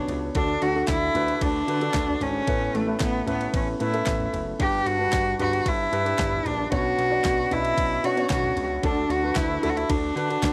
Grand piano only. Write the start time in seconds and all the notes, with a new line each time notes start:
Already playing: B2 B3 C#4 D4 F#4 A4 C#5
0.35 D3 D4 F#4 A4
0.75 D4 F#4 A4
1.15 D4 F#4 B4
1.68 D4 F#4 B4
1.81 D4 F#4 A4
2.47 A2 A3 B3 C#4 E4 B4
2.87 A3 B3 C#4 E4 B4
3.26 A3 B3 C#4 E4 B4
3.80 A3 B3 C#4 E4 B4
3.93 A3 B3 C#4 E4 A4
4.59 G2 D4 G4 B4
4.99 G3 D4 B4
5.39 D4 G4 B4
5.92 D4 G4 B4
6.05 D4 G4 B4
6.71 B2 B3 C#4 D4 F#4 C#5
7.10 B3 D4 F#4 C#5 D5
7.50 B3 C#4 D4 F#4 D#5
7.58 E5
8.04 B3 C#4 D4 F#4 C#5
8.16 B3 C#4 D4 F#4 C#5
8.84 D3 D4 F#4 A4
9.23 D4 F#4 B4
9.62 D4 F#4 A4
10.15 D4 F#4 B4
10.29 D4 F#4 B4